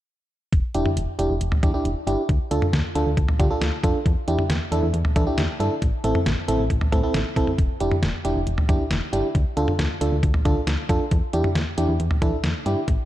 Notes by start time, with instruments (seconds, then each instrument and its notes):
0.53 fm bass E1, kick, closed hi-hat
0.74 fm bass E1, fm electric piano D4 E4 G4, closed hi-hat
0.86 mid tom
0.97 fm bass E1, closed hi-hat
1.19 fm bass E1, fm electric piano D4 E4 G4, closed hi-hat
1.30 fm bass E1
1.41 fm bass E1, closed hi-hat
1.52 mid tom
1.63 fm bass E2, fm electric piano D4 E4 G4, kick, closed hi-hat, mid tom
1.74 fm electric piano D4 E4 G4
1.85 fm bass E1, closed hi-hat
2.07 fm bass G1, fm electric piano D4 E4 G4, closed hi-hat
2.29 fm bass D2, kick, closed hi-hat
2.51 fm bass D2, fm electric piano D4 F4 A4, closed hi-hat
2.62 mid tom
2.73 fm bass D2, snare, closed hi-hat
2.95 fm bass D2, fm electric piano D4 F4 A4, closed hi-hat
3.06 fm bass D2
3.17 fm bass D2, kick, closed hi-hat
3.28 mid tom
3.39 fm bass D3, fm electric piano D4 F4 G4, kick, closed hi-hat, mid tom
3.50 fm electric piano D4 F4 A4
3.61 fm bass D2, snare, closed hi-hat
3.84 fm bass F2, fm electric piano D4 F4 A4, kick, closed hi-hat
4.06 fm bass E2, kick, closed hi-hat
4.28 fm bass E2, fm electric piano D4 E4 G4, closed hi-hat
4.39 mid tom
4.50 fm bass E2, snare, closed hi-hat
4.72 fm bass E2, fm electric piano D4 E4 A4, closed hi-hat
4.83 fm bass E2
4.94 fm bass E2, closed hi-hat
5.05 mid tom
5.16 fm bass E3, fm electric piano D4 E4 A4, kick, closed hi-hat, mid tom
5.27 fm electric piano D4 E4 G4
5.38 fm bass E2, snare, closed hi-hat
5.60 fm bass G2, fm electric piano D4 E4 A4, closed hi-hat
5.82 fm bass A1, kick, closed hi-hat
6.04 fm bass A1, fm electric piano C4 E4 A4, closed hi-hat
6.15 mid tom
6.26 fm bass A1, snare, closed hi-hat
6.48 fm bass A1, fm electric piano C4 E4 A4, closed hi-hat
6.59 fm bass A1
6.70 fm bass A1, kick, closed hi-hat
6.81 mid tom
6.92 fm bass A2, fm electric piano C4 E4 A4, kick, closed hi-hat, mid tom
7.03 fm electric piano C4 E4 A4
7.14 fm bass A1, snare, closed hi-hat
7.36 fm bass C2, fm electric piano C4 E4 A4, kick, closed hi-hat
7.47 mid tom
7.58 fm bass E1, kick, closed hi-hat
7.80 fm bass E1, fm electric piano D4 E4 G4, closed hi-hat
7.91 mid tom
8.03 fm bass E1, snare, closed hi-hat
8.25 fm bass E1, fm electric piano D4 E4 G4, closed hi-hat
8.36 fm bass E1
8.47 fm bass E1, closed hi-hat
8.58 mid tom
8.69 fm bass E2, fm electric piano D4 E4 G4, kick, closed hi-hat, mid tom
8.91 fm bass E1, snare, closed hi-hat
9.13 fm bass G1, fm electric piano D4 E4 G4, closed hi-hat
9.35 fm bass D2, kick, closed hi-hat
9.57 fm bass D2, fm electric piano D4 F4 A4, closed hi-hat
9.68 mid tom
9.79 fm bass D2, snare, closed hi-hat
10.01 fm bass D2, fm electric piano D4 F4 A4, closed hi-hat
10.12 fm bass D2
10.23 fm bass D2, kick, closed hi-hat
10.34 mid tom
10.45 fm bass D3, fm electric piano D4 F4 A4, kick, closed hi-hat, mid tom
10.67 fm bass D2, snare, closed hi-hat
10.89 fm bass F2, fm electric piano D4 F4 A4, kick, closed hi-hat
11.11 fm bass E2, kick, closed hi-hat
11.33 fm bass E2, fm electric piano D4 E4 G4, closed hi-hat
11.44 mid tom
11.55 fm bass E2, snare, closed hi-hat
11.78 fm bass E2, fm electric piano D4 E4 G4, closed hi-hat
11.89 fm bass E2
12.00 fm bass E2, closed hi-hat
12.11 mid tom
12.22 fm bass E3, fm electric piano D4 E4 A4, kick, closed hi-hat, mid tom
12.44 fm bass E2, snare, closed hi-hat
12.66 fm bass G2, fm electric piano D4 E4 G4, closed hi-hat
12.88 fm bass A1, kick, closed hi-hat